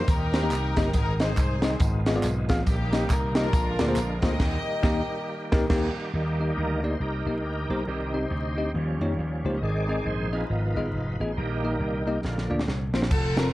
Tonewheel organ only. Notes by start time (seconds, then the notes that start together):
Already playing: D#3 G3 A#3 G4
0.94 G#3 C4 G#4
1.79 B3 F4
2.66 G3 A#3 G4
3.53 D3 G#3 F4
4.41 D#3 G3 G4
6.15 D#3 G3 A#3 D#4 G4
6.57 A#4
6.84 C5
7.01 D#4 G4 A#4
7.87 D#3 G3 C4 D#4 G4 A#4
8.16 D#4 G4 C5
8.76 F3 G3 C#4
9.57 D#5
9.62 D#3 G#3 C4 G#4 D5
9.89 D5
10.07 C5
10.34 D#4 F4 B4
10.49 F3 B3 A#4
11.20 G#4
11.32 D#3 C5
11.37 G3 A#3 D#4 G4 A#4
12.25 D3 F3 A#3